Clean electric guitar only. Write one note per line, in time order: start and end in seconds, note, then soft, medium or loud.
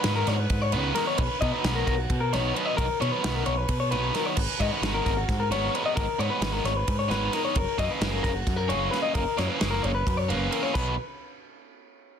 0.00 0.15 B4 medium
0.16 0.28 A#4 medium
0.28 0.39 C#5 medium
0.39 0.62 B4 medium
0.62 0.72 C#5 medium
0.72 0.94 B4 medium
0.95 1.07 A#4 medium
1.07 1.18 C#5 medium
1.18 1.40 B4 medium
1.41 1.52 D#5 medium
1.52 1.75 B4 medium
1.75 1.85 A#4 medium
1.87 1.98 A#4 medium
1.98 2.21 F#4 medium
2.20 2.33 A#4 medium
2.33 2.54 C#5 medium
2.54 2.65 B4 medium
2.65 2.77 D#5 medium
2.77 3.00 A#4 medium
3.01 3.12 C#5 medium
3.12 3.35 B4 medium
3.35 3.46 A#4 medium
3.46 3.57 C#5 medium
3.57 3.79 B4 medium
3.80 3.91 C#5 medium
3.91 4.15 B4 medium
4.15 4.26 A#4 medium
4.26 4.36 C#5 medium
4.36 4.60 B4 medium
4.60 4.71 D#5 medium
4.71 4.94 B4 medium
4.94 5.04 A#4 medium
5.05 5.17 A#4 medium
5.17 5.40 F#4 medium
5.40 5.51 A#4 medium
5.52 5.75 C#5 medium
5.75 5.85 B4 medium
5.86 5.95 D#5 medium
5.96 6.19 A#4 medium
6.19 6.30 C#5 medium
6.30 6.53 B4 medium
6.53 6.64 A#4 medium
6.65 6.76 C#5 medium
6.76 6.98 B4 medium
6.99 7.10 C#5 medium
7.11 7.34 B4 medium
7.34 7.44 A#4 medium
7.45 7.57 C#5 medium
7.57 7.79 A#4 loud
7.79 7.90 D#5 medium
7.91 8.12 B4 medium
8.12 8.22 A#4 medium
8.23 8.35 A#4 medium
8.35 8.56 F#4 medium
8.56 8.69 A#4 medium
8.69 8.91 C#5 medium
8.91 9.02 B4 medium
9.02 9.14 D#5 medium
9.15 9.37 A#4 medium
9.37 9.48 C#5 medium
9.48 9.70 B4 medium
9.71 9.83 A#4 medium
9.83 9.94 C#5 medium
9.95 10.17 B4 medium
10.17 10.29 C#5 medium
10.29 10.51 B4 medium
10.51 10.63 A#4 medium
10.63 10.74 C#5 medium
10.74 10.96 B4 medium